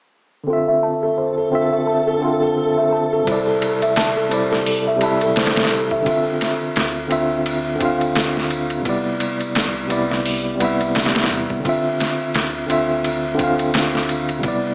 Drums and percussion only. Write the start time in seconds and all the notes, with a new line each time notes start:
3.26 kick, ride, shaker
3.47 shaker
3.61 ride, shaker
3.82 ride, triangle, shaker
3.96 snare, ride, shaker
4.31 ride, shaker
4.51 snare, shaker
4.66 open hi-hat, shaker
4.86 shaker
5.01 ride, shaker
5.20 ride, triangle, shaker
5.36 snare, ride, shaker
5.46 snare, ride
5.56 snare, ride, shaker
5.64 snare, ride
5.71 ride, shaker
5.91 kick, shaker
6.05 kick, ride, shaker
6.26 shaker
6.41 snare, ride, shaker
6.60 shaker
6.76 snare, ride, shaker
7.11 ride, shaker
7.31 shaker
7.45 ride, shaker
7.80 kick, ride, shaker
8.00 ride, shaker
8.15 snare, ride, shaker
8.35 snare, shaker
8.50 ride, shaker
8.70 ride, shaker
8.84 kick, ride, shaker
9.06 shaker
9.20 ride, shaker
9.41 ride, shaker
9.55 snare, ride, shaker
9.75 shaker
9.90 ride, shaker
10.11 snare, shaker
10.25 open hi-hat, shaker
10.60 ride, shaker
10.79 ride, triangle, shaker
10.94 snare, ride, shaker
11.05 snare, ride
11.15 snare, ride, shaker
11.23 snare, ride
11.28 ride, shaker
11.49 kick, shaker
11.65 kick, ride, shaker
11.84 shaker
11.99 snare, ride, shaker
12.19 shaker
12.34 snare, ride, shaker
12.68 ride, shaker
12.90 shaker
13.04 ride, shaker
13.39 kick, ride, shaker
13.59 ride, shaker
13.74 snare, ride, shaker
13.95 snare, shaker
14.09 ride, shaker
14.29 ride, shaker
14.43 kick, ride, shaker
14.64 shaker